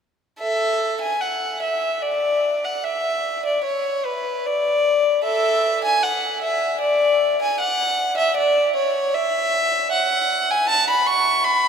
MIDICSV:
0, 0, Header, 1, 2, 480
1, 0, Start_track
1, 0, Tempo, 810811
1, 243, Time_signature, 3, 2, 24, 8
1, 2641, Tempo, 779221
1, 7090, End_track
2, 0, Start_track
2, 0, Title_t, "Violin"
2, 0, Program_c, 0, 40
2, 236, Note_on_c, 0, 69, 64
2, 236, Note_on_c, 0, 76, 71
2, 574, Note_off_c, 0, 69, 0
2, 574, Note_off_c, 0, 76, 0
2, 601, Note_on_c, 0, 80, 73
2, 714, Note_on_c, 0, 78, 61
2, 720, Note_off_c, 0, 80, 0
2, 959, Note_off_c, 0, 78, 0
2, 963, Note_on_c, 0, 76, 65
2, 1200, Note_on_c, 0, 74, 71
2, 1202, Note_off_c, 0, 76, 0
2, 1565, Note_on_c, 0, 78, 66
2, 1567, Note_off_c, 0, 74, 0
2, 1680, Note_on_c, 0, 76, 74
2, 1687, Note_off_c, 0, 78, 0
2, 2042, Note_off_c, 0, 76, 0
2, 2047, Note_on_c, 0, 74, 63
2, 2158, Note_on_c, 0, 73, 62
2, 2165, Note_off_c, 0, 74, 0
2, 2397, Note_off_c, 0, 73, 0
2, 2401, Note_on_c, 0, 71, 65
2, 2638, Note_off_c, 0, 71, 0
2, 2640, Note_on_c, 0, 74, 75
2, 3121, Note_on_c, 0, 76, 79
2, 3122, Note_on_c, 0, 69, 65
2, 3123, Note_off_c, 0, 74, 0
2, 3465, Note_off_c, 0, 69, 0
2, 3481, Note_off_c, 0, 76, 0
2, 3493, Note_on_c, 0, 80, 77
2, 3610, Note_on_c, 0, 78, 66
2, 3611, Note_off_c, 0, 80, 0
2, 3849, Note_on_c, 0, 76, 70
2, 3853, Note_off_c, 0, 78, 0
2, 4087, Note_off_c, 0, 76, 0
2, 4090, Note_on_c, 0, 74, 81
2, 4445, Note_off_c, 0, 74, 0
2, 4466, Note_on_c, 0, 80, 78
2, 4577, Note_off_c, 0, 80, 0
2, 4579, Note_on_c, 0, 78, 82
2, 4926, Note_off_c, 0, 78, 0
2, 4930, Note_on_c, 0, 76, 81
2, 5046, Note_off_c, 0, 76, 0
2, 5051, Note_on_c, 0, 74, 80
2, 5282, Note_off_c, 0, 74, 0
2, 5290, Note_on_c, 0, 73, 76
2, 5520, Note_off_c, 0, 73, 0
2, 5529, Note_on_c, 0, 76, 89
2, 6001, Note_off_c, 0, 76, 0
2, 6004, Note_on_c, 0, 78, 87
2, 6354, Note_off_c, 0, 78, 0
2, 6364, Note_on_c, 0, 80, 85
2, 6479, Note_on_c, 0, 81, 96
2, 6482, Note_off_c, 0, 80, 0
2, 6598, Note_off_c, 0, 81, 0
2, 6609, Note_on_c, 0, 83, 81
2, 6713, Note_on_c, 0, 85, 89
2, 6723, Note_off_c, 0, 83, 0
2, 6942, Note_on_c, 0, 83, 92
2, 6957, Note_off_c, 0, 85, 0
2, 7090, Note_off_c, 0, 83, 0
2, 7090, End_track
0, 0, End_of_file